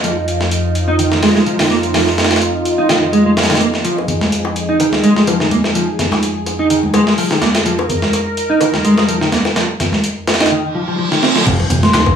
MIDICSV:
0, 0, Header, 1, 8, 480
1, 0, Start_track
1, 0, Key_signature, -4, "minor"
1, 0, Tempo, 476190
1, 36, Time_signature, 4, 2, 24, 8
1, 12255, End_track
2, 0, Start_track
2, 0, Title_t, "Synth bell"
2, 0, Program_c, 0, 98
2, 11926, Note_on_c, 0, 84, 89
2, 11997, Note_off_c, 0, 84, 0
2, 12032, Note_on_c, 0, 84, 79
2, 12117, Note_off_c, 0, 84, 0
2, 12255, End_track
3, 0, Start_track
3, 0, Title_t, "Analog synth pad"
3, 0, Program_c, 1, 89
3, 0, Note_on_c, 1, 41, 83
3, 0, Note_on_c, 1, 53, 75
3, 0, Note_on_c, 1, 63, 74
3, 38, Note_on_c, 1, 65, 94
3, 3864, Note_off_c, 1, 65, 0
3, 3879, Note_on_c, 1, 68, 90
3, 7705, Note_off_c, 1, 68, 0
3, 7717, Note_on_c, 1, 70, 94
3, 10556, Note_off_c, 1, 41, 0
3, 10556, Note_off_c, 1, 63, 0
3, 10557, Note_off_c, 1, 53, 0
3, 10593, Note_off_c, 1, 70, 0
3, 11554, Note_on_c, 1, 53, 84
3, 11556, Note_on_c, 1, 60, 78
3, 11556, Note_on_c, 1, 63, 78
3, 11556, Note_on_c, 1, 68, 97
3, 12255, Note_off_c, 1, 53, 0
3, 12255, Note_off_c, 1, 60, 0
3, 12255, Note_off_c, 1, 63, 0
3, 12255, Note_off_c, 1, 68, 0
3, 12255, End_track
4, 0, Start_track
4, 0, Title_t, "Clean electric guitar"
4, 0, Program_c, 2, 27
4, 35, Note_on_c, 2, 53, 77
4, 159, Note_off_c, 2, 53, 0
4, 884, Note_on_c, 2, 63, 91
4, 964, Note_off_c, 2, 63, 0
4, 993, Note_on_c, 2, 51, 75
4, 1118, Note_off_c, 2, 51, 0
4, 1233, Note_on_c, 2, 56, 99
4, 1351, Note_off_c, 2, 56, 0
4, 1365, Note_on_c, 2, 56, 92
4, 1412, Note_off_c, 2, 56, 0
4, 1475, Note_on_c, 2, 53, 80
4, 1592, Note_off_c, 2, 53, 0
4, 1605, Note_on_c, 2, 51, 71
4, 1653, Note_off_c, 2, 51, 0
4, 1716, Note_on_c, 2, 58, 96
4, 1771, Note_off_c, 2, 58, 0
4, 1954, Note_on_c, 2, 53, 75
4, 2078, Note_off_c, 2, 53, 0
4, 2804, Note_on_c, 2, 63, 93
4, 2883, Note_off_c, 2, 63, 0
4, 2912, Note_on_c, 2, 51, 76
4, 3037, Note_off_c, 2, 51, 0
4, 3153, Note_on_c, 2, 56, 97
4, 3271, Note_off_c, 2, 56, 0
4, 3285, Note_on_c, 2, 56, 93
4, 3333, Note_off_c, 2, 56, 0
4, 3392, Note_on_c, 2, 53, 79
4, 3511, Note_off_c, 2, 53, 0
4, 3527, Note_on_c, 2, 51, 71
4, 3573, Note_off_c, 2, 51, 0
4, 3632, Note_on_c, 2, 58, 95
4, 3689, Note_off_c, 2, 58, 0
4, 3875, Note_on_c, 2, 53, 72
4, 3999, Note_off_c, 2, 53, 0
4, 4726, Note_on_c, 2, 63, 91
4, 4804, Note_off_c, 2, 63, 0
4, 4835, Note_on_c, 2, 51, 73
4, 4959, Note_off_c, 2, 51, 0
4, 5076, Note_on_c, 2, 56, 100
4, 5193, Note_off_c, 2, 56, 0
4, 5203, Note_on_c, 2, 56, 93
4, 5252, Note_off_c, 2, 56, 0
4, 5316, Note_on_c, 2, 53, 79
4, 5433, Note_off_c, 2, 53, 0
4, 5446, Note_on_c, 2, 51, 74
4, 5493, Note_off_c, 2, 51, 0
4, 5557, Note_on_c, 2, 58, 98
4, 5612, Note_off_c, 2, 58, 0
4, 5795, Note_on_c, 2, 53, 77
4, 5919, Note_off_c, 2, 53, 0
4, 6645, Note_on_c, 2, 63, 91
4, 6724, Note_off_c, 2, 63, 0
4, 6755, Note_on_c, 2, 51, 76
4, 6879, Note_off_c, 2, 51, 0
4, 6995, Note_on_c, 2, 56, 97
4, 7112, Note_off_c, 2, 56, 0
4, 7124, Note_on_c, 2, 56, 94
4, 7172, Note_off_c, 2, 56, 0
4, 7234, Note_on_c, 2, 53, 77
4, 7352, Note_off_c, 2, 53, 0
4, 7366, Note_on_c, 2, 51, 73
4, 7413, Note_off_c, 2, 51, 0
4, 7472, Note_on_c, 2, 58, 96
4, 7529, Note_off_c, 2, 58, 0
4, 7714, Note_on_c, 2, 53, 75
4, 7838, Note_off_c, 2, 53, 0
4, 8564, Note_on_c, 2, 63, 91
4, 8644, Note_off_c, 2, 63, 0
4, 8674, Note_on_c, 2, 51, 77
4, 8798, Note_off_c, 2, 51, 0
4, 8915, Note_on_c, 2, 56, 99
4, 9032, Note_off_c, 2, 56, 0
4, 9044, Note_on_c, 2, 56, 97
4, 9092, Note_off_c, 2, 56, 0
4, 9153, Note_on_c, 2, 53, 84
4, 9271, Note_off_c, 2, 53, 0
4, 9283, Note_on_c, 2, 51, 72
4, 9332, Note_off_c, 2, 51, 0
4, 9393, Note_on_c, 2, 58, 98
4, 9450, Note_off_c, 2, 58, 0
4, 9633, Note_on_c, 2, 53, 78
4, 9758, Note_off_c, 2, 53, 0
4, 10486, Note_on_c, 2, 63, 93
4, 10564, Note_off_c, 2, 63, 0
4, 10595, Note_on_c, 2, 51, 76
4, 10719, Note_off_c, 2, 51, 0
4, 10833, Note_on_c, 2, 53, 74
4, 10890, Note_off_c, 2, 53, 0
4, 10965, Note_on_c, 2, 53, 72
4, 11044, Note_off_c, 2, 53, 0
4, 11073, Note_on_c, 2, 53, 80
4, 11197, Note_off_c, 2, 53, 0
4, 11201, Note_on_c, 2, 51, 77
4, 11303, Note_off_c, 2, 51, 0
4, 11311, Note_on_c, 2, 60, 73
4, 11436, Note_off_c, 2, 60, 0
4, 11440, Note_on_c, 2, 53, 75
4, 11542, Note_off_c, 2, 53, 0
4, 11554, Note_on_c, 2, 53, 83
4, 11678, Note_off_c, 2, 53, 0
4, 12255, End_track
5, 0, Start_track
5, 0, Title_t, "Picked electric bass"
5, 0, Program_c, 3, 34
5, 11557, Note_on_c, 3, 29, 98
5, 11651, Note_off_c, 3, 29, 0
5, 11794, Note_on_c, 3, 29, 90
5, 11890, Note_off_c, 3, 29, 0
5, 12036, Note_on_c, 3, 39, 103
5, 12131, Note_off_c, 3, 39, 0
5, 12255, End_track
6, 0, Start_track
6, 0, Title_t, "Impact"
6, 0, Program_c, 4, 103
6, 11555, Note_on_c, 4, 60, 73
6, 12255, Note_off_c, 4, 60, 0
6, 12255, End_track
7, 0, Start_track
7, 0, Title_t, "Reverse cymbal"
7, 0, Program_c, 5, 119
7, 10595, Note_on_c, 5, 60, 72
7, 11556, Note_off_c, 5, 60, 0
7, 12255, End_track
8, 0, Start_track
8, 0, Title_t, "Drums"
8, 40, Note_on_c, 9, 42, 83
8, 141, Note_off_c, 9, 42, 0
8, 281, Note_on_c, 9, 42, 63
8, 381, Note_off_c, 9, 42, 0
8, 410, Note_on_c, 9, 38, 45
8, 510, Note_off_c, 9, 38, 0
8, 518, Note_on_c, 9, 42, 83
8, 619, Note_off_c, 9, 42, 0
8, 758, Note_on_c, 9, 42, 67
8, 858, Note_off_c, 9, 42, 0
8, 997, Note_on_c, 9, 42, 84
8, 1098, Note_off_c, 9, 42, 0
8, 1126, Note_on_c, 9, 38, 47
8, 1227, Note_off_c, 9, 38, 0
8, 1236, Note_on_c, 9, 38, 99
8, 1236, Note_on_c, 9, 46, 69
8, 1337, Note_off_c, 9, 38, 0
8, 1337, Note_off_c, 9, 46, 0
8, 1366, Note_on_c, 9, 38, 38
8, 1467, Note_off_c, 9, 38, 0
8, 1477, Note_on_c, 9, 42, 56
8, 1577, Note_off_c, 9, 42, 0
8, 1605, Note_on_c, 9, 38, 102
8, 1605, Note_on_c, 9, 46, 71
8, 1706, Note_off_c, 9, 38, 0
8, 1706, Note_off_c, 9, 46, 0
8, 1716, Note_on_c, 9, 38, 39
8, 1817, Note_off_c, 9, 38, 0
8, 1848, Note_on_c, 9, 42, 56
8, 1949, Note_off_c, 9, 42, 0
8, 1958, Note_on_c, 9, 38, 100
8, 1958, Note_on_c, 9, 46, 69
8, 2059, Note_off_c, 9, 38, 0
8, 2059, Note_off_c, 9, 46, 0
8, 2087, Note_on_c, 9, 38, 39
8, 2188, Note_off_c, 9, 38, 0
8, 2198, Note_on_c, 9, 38, 83
8, 2198, Note_on_c, 9, 42, 62
8, 2262, Note_off_c, 9, 38, 0
8, 2262, Note_off_c, 9, 42, 0
8, 2262, Note_on_c, 9, 38, 87
8, 2262, Note_on_c, 9, 42, 63
8, 2325, Note_off_c, 9, 38, 0
8, 2325, Note_off_c, 9, 42, 0
8, 2325, Note_on_c, 9, 38, 86
8, 2325, Note_on_c, 9, 42, 62
8, 2380, Note_off_c, 9, 38, 0
8, 2380, Note_off_c, 9, 42, 0
8, 2380, Note_on_c, 9, 38, 87
8, 2380, Note_on_c, 9, 42, 64
8, 2436, Note_off_c, 9, 42, 0
8, 2436, Note_on_c, 9, 42, 81
8, 2481, Note_off_c, 9, 38, 0
8, 2537, Note_off_c, 9, 42, 0
8, 2675, Note_on_c, 9, 42, 67
8, 2776, Note_off_c, 9, 42, 0
8, 2916, Note_on_c, 9, 38, 102
8, 2916, Note_on_c, 9, 42, 74
8, 3017, Note_off_c, 9, 38, 0
8, 3017, Note_off_c, 9, 42, 0
8, 3157, Note_on_c, 9, 42, 62
8, 3258, Note_off_c, 9, 42, 0
8, 3397, Note_on_c, 9, 38, 83
8, 3397, Note_on_c, 9, 42, 61
8, 3463, Note_off_c, 9, 38, 0
8, 3463, Note_off_c, 9, 42, 0
8, 3463, Note_on_c, 9, 38, 82
8, 3463, Note_on_c, 9, 42, 64
8, 3527, Note_off_c, 9, 38, 0
8, 3527, Note_off_c, 9, 42, 0
8, 3527, Note_on_c, 9, 38, 86
8, 3527, Note_on_c, 9, 42, 65
8, 3581, Note_off_c, 9, 38, 0
8, 3581, Note_off_c, 9, 42, 0
8, 3581, Note_on_c, 9, 38, 84
8, 3581, Note_on_c, 9, 42, 66
8, 3637, Note_off_c, 9, 42, 0
8, 3637, Note_on_c, 9, 42, 67
8, 3682, Note_off_c, 9, 38, 0
8, 3737, Note_off_c, 9, 42, 0
8, 3767, Note_on_c, 9, 38, 36
8, 3868, Note_off_c, 9, 38, 0
8, 3876, Note_on_c, 9, 42, 83
8, 3977, Note_off_c, 9, 42, 0
8, 4015, Note_on_c, 9, 60, 49
8, 4110, Note_on_c, 9, 64, 67
8, 4115, Note_on_c, 9, 42, 64
8, 4116, Note_off_c, 9, 60, 0
8, 4211, Note_off_c, 9, 64, 0
8, 4216, Note_off_c, 9, 42, 0
8, 4247, Note_on_c, 9, 38, 43
8, 4247, Note_on_c, 9, 63, 84
8, 4348, Note_off_c, 9, 38, 0
8, 4348, Note_off_c, 9, 63, 0
8, 4357, Note_on_c, 9, 42, 87
8, 4458, Note_off_c, 9, 42, 0
8, 4483, Note_on_c, 9, 60, 69
8, 4584, Note_off_c, 9, 60, 0
8, 4596, Note_on_c, 9, 42, 68
8, 4697, Note_off_c, 9, 42, 0
8, 4836, Note_on_c, 9, 42, 85
8, 4841, Note_on_c, 9, 60, 45
8, 4937, Note_off_c, 9, 42, 0
8, 4941, Note_off_c, 9, 60, 0
8, 4963, Note_on_c, 9, 63, 63
8, 4967, Note_on_c, 9, 38, 46
8, 5063, Note_off_c, 9, 63, 0
8, 5068, Note_off_c, 9, 38, 0
8, 5077, Note_on_c, 9, 42, 66
8, 5177, Note_off_c, 9, 42, 0
8, 5206, Note_on_c, 9, 38, 43
8, 5307, Note_off_c, 9, 38, 0
8, 5315, Note_on_c, 9, 42, 84
8, 5320, Note_on_c, 9, 60, 66
8, 5416, Note_off_c, 9, 42, 0
8, 5421, Note_off_c, 9, 60, 0
8, 5446, Note_on_c, 9, 38, 38
8, 5546, Note_off_c, 9, 38, 0
8, 5557, Note_on_c, 9, 42, 67
8, 5557, Note_on_c, 9, 63, 96
8, 5658, Note_off_c, 9, 42, 0
8, 5658, Note_off_c, 9, 63, 0
8, 5685, Note_on_c, 9, 60, 53
8, 5688, Note_on_c, 9, 38, 42
8, 5786, Note_off_c, 9, 60, 0
8, 5789, Note_off_c, 9, 38, 0
8, 5798, Note_on_c, 9, 42, 84
8, 5899, Note_off_c, 9, 42, 0
8, 6038, Note_on_c, 9, 38, 39
8, 6038, Note_on_c, 9, 42, 66
8, 6039, Note_on_c, 9, 64, 71
8, 6139, Note_off_c, 9, 38, 0
8, 6139, Note_off_c, 9, 42, 0
8, 6140, Note_off_c, 9, 64, 0
8, 6162, Note_on_c, 9, 63, 79
8, 6169, Note_on_c, 9, 38, 35
8, 6172, Note_on_c, 9, 60, 75
8, 6263, Note_off_c, 9, 63, 0
8, 6270, Note_off_c, 9, 38, 0
8, 6272, Note_off_c, 9, 60, 0
8, 6277, Note_on_c, 9, 42, 80
8, 6377, Note_off_c, 9, 42, 0
8, 6514, Note_on_c, 9, 60, 49
8, 6517, Note_on_c, 9, 42, 66
8, 6615, Note_off_c, 9, 60, 0
8, 6617, Note_off_c, 9, 42, 0
8, 6755, Note_on_c, 9, 42, 84
8, 6856, Note_off_c, 9, 42, 0
8, 6887, Note_on_c, 9, 63, 65
8, 6988, Note_off_c, 9, 63, 0
8, 6992, Note_on_c, 9, 60, 80
8, 6996, Note_on_c, 9, 42, 67
8, 7093, Note_off_c, 9, 60, 0
8, 7097, Note_off_c, 9, 42, 0
8, 7127, Note_on_c, 9, 38, 47
8, 7228, Note_off_c, 9, 38, 0
8, 7236, Note_on_c, 9, 46, 75
8, 7337, Note_off_c, 9, 46, 0
8, 7366, Note_on_c, 9, 38, 46
8, 7379, Note_on_c, 9, 60, 45
8, 7467, Note_off_c, 9, 38, 0
8, 7474, Note_on_c, 9, 63, 87
8, 7476, Note_on_c, 9, 38, 105
8, 7476, Note_on_c, 9, 42, 75
8, 7480, Note_off_c, 9, 60, 0
8, 7575, Note_off_c, 9, 63, 0
8, 7577, Note_off_c, 9, 38, 0
8, 7577, Note_off_c, 9, 42, 0
8, 7607, Note_on_c, 9, 38, 100
8, 7607, Note_on_c, 9, 42, 78
8, 7708, Note_off_c, 9, 38, 0
8, 7708, Note_off_c, 9, 42, 0
8, 7719, Note_on_c, 9, 42, 84
8, 7820, Note_off_c, 9, 42, 0
8, 7850, Note_on_c, 9, 60, 84
8, 7951, Note_off_c, 9, 60, 0
8, 7956, Note_on_c, 9, 64, 71
8, 7960, Note_on_c, 9, 42, 65
8, 8057, Note_off_c, 9, 64, 0
8, 8060, Note_off_c, 9, 42, 0
8, 8088, Note_on_c, 9, 38, 45
8, 8088, Note_on_c, 9, 63, 75
8, 8189, Note_off_c, 9, 38, 0
8, 8189, Note_off_c, 9, 63, 0
8, 8198, Note_on_c, 9, 42, 84
8, 8198, Note_on_c, 9, 60, 54
8, 8299, Note_off_c, 9, 42, 0
8, 8299, Note_off_c, 9, 60, 0
8, 8439, Note_on_c, 9, 42, 66
8, 8540, Note_off_c, 9, 42, 0
8, 8675, Note_on_c, 9, 60, 79
8, 8678, Note_on_c, 9, 42, 86
8, 8776, Note_off_c, 9, 60, 0
8, 8779, Note_off_c, 9, 42, 0
8, 8804, Note_on_c, 9, 63, 63
8, 8807, Note_on_c, 9, 38, 47
8, 8905, Note_off_c, 9, 63, 0
8, 8908, Note_off_c, 9, 38, 0
8, 8917, Note_on_c, 9, 42, 67
8, 9018, Note_off_c, 9, 42, 0
8, 9047, Note_on_c, 9, 38, 45
8, 9052, Note_on_c, 9, 60, 51
8, 9148, Note_off_c, 9, 38, 0
8, 9152, Note_off_c, 9, 60, 0
8, 9158, Note_on_c, 9, 42, 82
8, 9258, Note_off_c, 9, 42, 0
8, 9287, Note_on_c, 9, 38, 37
8, 9388, Note_off_c, 9, 38, 0
8, 9398, Note_on_c, 9, 38, 99
8, 9398, Note_on_c, 9, 42, 77
8, 9398, Note_on_c, 9, 63, 81
8, 9499, Note_off_c, 9, 38, 0
8, 9499, Note_off_c, 9, 42, 0
8, 9499, Note_off_c, 9, 63, 0
8, 9527, Note_on_c, 9, 60, 75
8, 9528, Note_on_c, 9, 38, 41
8, 9627, Note_off_c, 9, 60, 0
8, 9629, Note_off_c, 9, 38, 0
8, 9637, Note_on_c, 9, 38, 100
8, 9637, Note_on_c, 9, 42, 76
8, 9738, Note_off_c, 9, 38, 0
8, 9738, Note_off_c, 9, 42, 0
8, 9878, Note_on_c, 9, 38, 38
8, 9878, Note_on_c, 9, 42, 65
8, 9878, Note_on_c, 9, 60, 50
8, 9880, Note_on_c, 9, 64, 79
8, 9979, Note_off_c, 9, 38, 0
8, 9979, Note_off_c, 9, 42, 0
8, 9979, Note_off_c, 9, 60, 0
8, 9981, Note_off_c, 9, 64, 0
8, 10001, Note_on_c, 9, 63, 89
8, 10008, Note_on_c, 9, 38, 35
8, 10101, Note_off_c, 9, 63, 0
8, 10109, Note_off_c, 9, 38, 0
8, 10117, Note_on_c, 9, 42, 86
8, 10218, Note_off_c, 9, 42, 0
8, 10357, Note_on_c, 9, 38, 84
8, 10357, Note_on_c, 9, 42, 66
8, 10358, Note_on_c, 9, 60, 72
8, 10423, Note_off_c, 9, 38, 0
8, 10423, Note_off_c, 9, 42, 0
8, 10423, Note_on_c, 9, 38, 88
8, 10423, Note_on_c, 9, 42, 65
8, 10459, Note_off_c, 9, 60, 0
8, 10488, Note_off_c, 9, 38, 0
8, 10488, Note_off_c, 9, 42, 0
8, 10488, Note_on_c, 9, 38, 89
8, 10488, Note_on_c, 9, 42, 68
8, 10543, Note_off_c, 9, 38, 0
8, 10543, Note_off_c, 9, 42, 0
8, 10543, Note_on_c, 9, 38, 90
8, 10543, Note_on_c, 9, 42, 69
8, 10644, Note_off_c, 9, 38, 0
8, 10644, Note_off_c, 9, 42, 0
8, 11208, Note_on_c, 9, 38, 50
8, 11308, Note_off_c, 9, 38, 0
8, 11319, Note_on_c, 9, 38, 73
8, 11420, Note_off_c, 9, 38, 0
8, 11447, Note_on_c, 9, 38, 78
8, 11547, Note_off_c, 9, 38, 0
8, 11556, Note_on_c, 9, 42, 34
8, 11557, Note_off_c, 9, 42, 0
8, 11557, Note_on_c, 9, 36, 114
8, 11557, Note_on_c, 9, 42, 89
8, 11557, Note_on_c, 9, 49, 93
8, 11658, Note_off_c, 9, 36, 0
8, 11658, Note_off_c, 9, 42, 0
8, 11658, Note_off_c, 9, 49, 0
8, 11690, Note_on_c, 9, 60, 50
8, 11791, Note_off_c, 9, 60, 0
8, 11793, Note_on_c, 9, 64, 79
8, 11796, Note_on_c, 9, 42, 77
8, 11797, Note_off_c, 9, 42, 0
8, 11797, Note_on_c, 9, 42, 70
8, 11894, Note_off_c, 9, 64, 0
8, 11898, Note_off_c, 9, 42, 0
8, 11924, Note_on_c, 9, 63, 95
8, 11926, Note_on_c, 9, 42, 43
8, 11927, Note_on_c, 9, 38, 46
8, 12025, Note_off_c, 9, 63, 0
8, 12027, Note_off_c, 9, 42, 0
8, 12028, Note_off_c, 9, 38, 0
8, 12036, Note_on_c, 9, 39, 110
8, 12036, Note_on_c, 9, 42, 34
8, 12037, Note_off_c, 9, 42, 0
8, 12037, Note_on_c, 9, 38, 115
8, 12037, Note_on_c, 9, 42, 90
8, 12137, Note_off_c, 9, 39, 0
8, 12138, Note_off_c, 9, 38, 0
8, 12138, Note_off_c, 9, 42, 0
8, 12161, Note_on_c, 9, 60, 77
8, 12167, Note_on_c, 9, 36, 98
8, 12255, Note_off_c, 9, 36, 0
8, 12255, Note_off_c, 9, 60, 0
8, 12255, End_track
0, 0, End_of_file